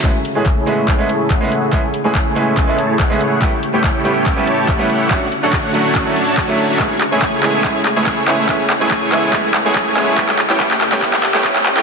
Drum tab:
HH |x-x-x-x-x-x-x-x-|x-x-x-x-x-x-x-x-|x-x-x-x-x-x-x-x-|x-x-x-x-x-x-x-x-|
CP |x---x---x---x---|x---x---x---x---|x---x---x---x---|x---x---x---x---|
BD |o---o---o---o---|o---o---o---o---|o---o---o---o---|o---o---o---o---|

HH |x-x-x-x-x-x-x-x-|x-x-x-x-x-x-x-x-|x-x-x-x-x-x-x-x-|
CP |x-x-x-x-x-x-x-x-|x-x-x-x-x-x-x-x-|xxxxxxxxxxxxxxxx|
BD |o---o---o---o---|o---o---o---o---|o---o---o---o---|